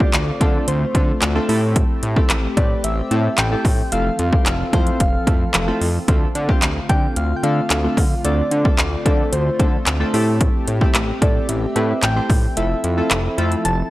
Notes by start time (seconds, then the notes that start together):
Already playing: D3 A3 C4 F4 D5
0.00 A3 C4 D4 F4 G4, kick
0.13 D2, clap, closed hi-hat
0.40 D3 A3 C4 D4 F4 A4, kick, closed hi-hat
0.68 D2 C5, closed hi-hat
0.95 D3 A3 C4 D4 F4 A4, kick, closed hi-hat
1.22 D2, clap, closed hi-hat
1.35 A3 C4 D4 F4 A4
1.49 A2 A3 C4 E4 G4 A4, open hi-hat
1.76 kick, closed hi-hat
2.03 A2, closed hi-hat
2.16 A3 C4 E4 G4 A4, kick
2.30 A1, clap, closed hi-hat
2.57 A2 A3 C4 E4 G4 B4 D5, kick, closed hi-hat
2.84 A1 E5, closed hi-hat
3.11 A2 A3 C4 E4 G4 A4, closed hi-hat
3.38 A1 G5, clap, closed hi-hat
3.51 A3 C4 E4 G4 A4
3.65 A2, kick, open hi-hat
3.92 F1 E3 F3 A3 C4 E4 F4 A4 F5, closed hi-hat
4.19 F2, closed hi-hat
4.32 A3 C4 E4 F4 G4, kick
4.46 F1, clap, closed hi-hat
4.73 F2 A3 C4 E4 F4 C5, kick, closed hi-hat
4.87 closed hi-hat
5.00 F1 F5, kick, closed hi-hat
5.27 F2 A3 C4 E4 F4 A4, kick, closed hi-hat
5.54 F1, clap, closed hi-hat
5.67 A3 C4 E4 F4 A4
5.81 F2, open hi-hat
6.08 D2 D3 A3 C4 D4 F4 A4, kick, closed hi-hat
6.35 D3, closed hi-hat
6.49 A3 C4 D4 F4 G4, kick
6.62 D2, clap, closed hi-hat
6.89 D3 A3 C4 D4 F4 G4 G5, kick, closed hi-hat
7.16 D2 F5, closed hi-hat
7.37 G5
7.43 D3 A3 C4 D4 F4 A4 F5, closed hi-hat
7.70 D2, clap, closed hi-hat
7.84 A3 C4 D4 F4 A4
7.97 D3, kick, open hi-hat
8.24 D2 A3 C4 D4 F4 A4 D5, closed hi-hat
8.51 D3, closed hi-hat
8.65 A3 C4 D4 F4 A4, kick
8.78 D2, clap, closed hi-hat
9.05 D3 A3 C4 D4 F4 A4, kick, closed hi-hat
9.32 D2 C5, closed hi-hat
9.59 D3 A3 C4 D4 F4 A4, kick, closed hi-hat
9.86 D2, clap, closed hi-hat
10.00 A3 C4 D4 F4 A4
10.13 A2 A3 C4 E4 G4 A4, open hi-hat
10.41 kick, closed hi-hat
10.68 A2, closed hi-hat
10.81 A3 C4 E4 G4 A4, kick
10.95 A1, clap, closed hi-hat
11.21 A2 A3 C4 E4 G4 A4 D5, kick, closed hi-hat
11.49 A1 E5, closed hi-hat
11.76 A2 A3 C4 E4 G4 B4, closed hi-hat
12.03 A1 G5, clap, closed hi-hat
12.16 A3 C4 E4 G4 C5
12.30 A2, kick, open hi-hat
12.57 F1 F3 A3 C4 E4 F4 A4 E5, closed hi-hat
12.84 F2, closed hi-hat
12.97 A3 C4 E4 F4 A4
13.11 F1, clap, closed hi-hat
13.38 F2 A3 C4 E4 F4 A4, closed hi-hat
13.52 closed hi-hat
13.65 F1 A5, closed hi-hat